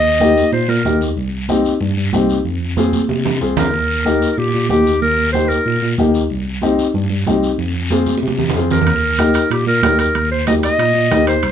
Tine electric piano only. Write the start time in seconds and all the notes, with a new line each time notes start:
Already playing: D#2
0.52 A#2
0.68 A#2
0.85 D#2
1.16 C2
1.81 G2
1.97 G2
2.13 C2
2.45 F2
3.09 C3
3.25 C3
3.41 C2
3.58 D2
3.73 D#2
4.38 A#2
4.54 A#2
4.69 D#2
5.02 D#2
5.66 A#2
5.82 A#2
5.98 D#2
6.30 C2
6.94 G2
7.10 G2
7.26 C2
7.58 F2
8.22 C3
8.39 C3
8.54 F2
8.86 D#2
9.50 A#2
9.67 A#2
9.82 D#2
10.15 D#2
10.78 A#2
10.95 A#2
11.11 D#2
11.43 C2